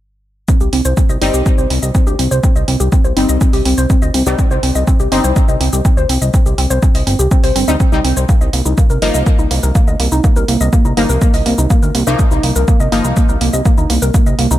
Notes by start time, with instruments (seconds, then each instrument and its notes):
0.48 synth pluck C4, kick, shaker
0.61 analog synth bass C2, synth pluck G4, shaker
0.73 analog synth bass C2, synth pluck C4, open hi-hat
0.85 analog synth bass C2, synth pluck C5, shaker
0.97 synth pluck C4, kick, shaker
1.09 analog synth bass C2, synth pluck D#5, shaker
1.22 analog synth bass G1, synth stab G3 C4 D#4, synth pluck C4, open hi-hat
1.34 analog synth bass C2, synth pluck G4, shaker
1.46 synth pluck C4, kick, shaker
1.58 analog synth bass C2, synth pluck C5, shaker
1.70 analog synth bass C2, synth pluck C4, open hi-hat
1.83 analog synth bass C2, synth pluck D#5, shaker
1.95 synth pluck C4, kick, shaker
2.07 analog synth bass D2, synth pluck G4, shaker
2.19 analog synth bass C2, synth pluck C4, open hi-hat
2.31 analog synth bass C2, synth pluck C5, shaker
2.43 synth pluck C4, kick, shaker
2.56 analog synth bass C2, synth pluck D#5, shaker
2.68 analog synth bass C2, synth pluck C4, open hi-hat
2.80 analog synth bass C2, synth pluck G4, shaker
2.92 synth pluck C4, kick, shaker
3.04 analog synth bass C2, synth pluck C5, shaker
3.17 analog synth bass G1, synth stab G3 C4 D#4, synth pluck C4, open hi-hat
3.29 analog synth bass C2, synth pluck D#5, shaker
3.41 synth pluck C4, kick, shaker
3.53 analog synth bass C2, synth pluck G4, open hi-hat, shaker
3.65 analog synth bass C2, synth pluck C4, open hi-hat
3.78 analog synth bass C2, synth pluck C5, shaker
3.90 synth pluck C4, kick, shaker
4.02 analog synth bass D2, synth pluck D#5, shaker
4.14 analog synth bass C2, synth pluck C4, open hi-hat
4.26 analog synth bass C2, synth stab G3 C4 D#4, synth pluck G4, shaker
4.39 synth pluck C4, kick, shaker
4.51 analog synth bass C2, synth pluck C5, shaker
4.63 analog synth bass C2, synth pluck C4, open hi-hat
4.75 analog synth bass C2, synth pluck D#5, shaker
4.87 synth pluck C4, kick, shaker
5.00 analog synth bass C2, synth pluck G4, shaker
5.12 analog synth bass G1, synth stab G3 C4 D#4, synth pluck C4, open hi-hat
5.24 analog synth bass C2, synth pluck C5, shaker
5.36 synth pluck C4, kick, shaker
5.48 analog synth bass C2, synth pluck D#5, shaker
5.60 analog synth bass C2, synth pluck C4, open hi-hat
5.73 analog synth bass C2, synth pluck G4, shaker
5.85 synth pluck C4, kick, shaker
5.97 analog synth bass D2, synth pluck C5, shaker
6.09 analog synth bass C2, synth pluck C4, open hi-hat
6.22 analog synth bass C2, synth pluck D#5, shaker
6.34 synth pluck C4, kick, shaker
6.46 analog synth bass C2, synth pluck G4, shaker
6.58 analog synth bass C2, synth pluck C4, open hi-hat
6.70 analog synth bass C2, synth pluck C5, shaker
6.83 synth pluck C4, kick, shaker
6.95 analog synth bass C2, synth pluck D#5, open hi-hat, shaker
7.07 analog synth bass G1, synth pluck C4, open hi-hat
7.19 analog synth bass C2, synth pluck G4, shaker
7.31 synth pluck C4, kick, shaker
7.44 analog synth bass C2, synth pluck C5, open hi-hat, shaker
7.56 analog synth bass G1, synth pluck C4, open hi-hat
7.68 analog synth bass D2, synth stab G3 C4 D#4, synth pluck D#5, shaker
7.80 synth pluck C4, kick, shaker
7.92 analog synth bass C2, synth stab G3 C4 D#4, synth pluck G4, shaker
8.04 analog synth bass C2, synth pluck C4, open hi-hat
8.17 analog synth bass C2, synth pluck C5, shaker
8.29 synth pluck A#3, kick, shaker
8.41 analog synth bass C2, synth pluck D#5, shaker
8.53 analog synth bass C2, synth pluck A#3, open hi-hat
8.65 analog synth bass C2, synth pluck D#4, shaker
8.78 synth pluck A#3, kick, shaker
8.90 analog synth bass C2, synth pluck A#4, shaker
9.02 analog synth bass G1, synth stab F3 A#3 D#4, synth pluck A#3, open hi-hat
9.14 analog synth bass C2, synth pluck D#5, shaker
9.26 synth pluck A#3, kick, shaker
9.39 analog synth bass C2, synth pluck D#4, shaker
9.51 analog synth bass C2, synth pluck A#3, open hi-hat
9.63 analog synth bass C2, synth pluck A#4, shaker
9.75 synth pluck A#3, kick, shaker
9.88 analog synth bass D2, synth pluck D#5, shaker
10.00 analog synth bass C2, synth pluck A#3, open hi-hat
10.12 analog synth bass C2, synth pluck D#4, shaker
10.24 synth pluck A#3, kick, shaker
10.36 analog synth bass C2, synth pluck A#4, shaker
10.48 analog synth bass C2, synth pluck A#3, open hi-hat
10.61 analog synth bass C2, synth pluck D#5, shaker
10.73 synth pluck A#3, kick, shaker
10.85 analog synth bass C2, synth pluck D#4, shaker
10.97 analog synth bass G1, synth stab F3 A#3 D#4, synth pluck A#3, open hi-hat
11.09 analog synth bass C2, synth pluck A#4, shaker
11.21 synth pluck A#3, kick, shaker
11.34 analog synth bass C2, synth pluck D#5, open hi-hat, shaker
11.46 analog synth bass C2, synth pluck A#3, open hi-hat
11.58 analog synth bass C2, synth pluck D#4, shaker
11.70 synth pluck A#3, kick, shaker
11.83 analog synth bass D2, synth pluck A#4, shaker
11.95 analog synth bass C2, synth pluck A#3, open hi-hat
12.07 analog synth bass C2, synth stab F3 A#3 D#4, synth pluck D#5, shaker
12.19 synth pluck A#3, kick, shaker
12.31 analog synth bass C2, synth pluck D#4, shaker
12.43 analog synth bass C2, synth pluck A#3, open hi-hat
12.56 analog synth bass C2, synth pluck A#4, shaker
12.68 synth pluck A#3, kick, shaker
12.80 analog synth bass C2, synth pluck D#5, shaker
12.92 analog synth bass G1, synth stab F3 A#3 D#4, synth pluck A#3, open hi-hat
13.04 analog synth bass C2, synth pluck D#4, shaker
13.17 synth pluck A#3, kick, shaker
13.29 analog synth bass C2, synth pluck A#4, shaker
13.41 analog synth bass C2, synth pluck A#3, open hi-hat
13.53 analog synth bass C2, synth pluck D#5, shaker
13.65 synth pluck A#3, kick, shaker
13.78 analog synth bass D2, synth pluck D#4, shaker
13.90 analog synth bass C2, synth pluck A#3, open hi-hat
14.02 analog synth bass C2, synth pluck A#4, shaker
14.14 synth pluck A#3, kick, shaker
14.26 analog synth bass C2, synth pluck D#5, shaker
14.39 analog synth bass C2, synth pluck A#3, open hi-hat
14.51 analog synth bass C2, synth pluck D#4, shaker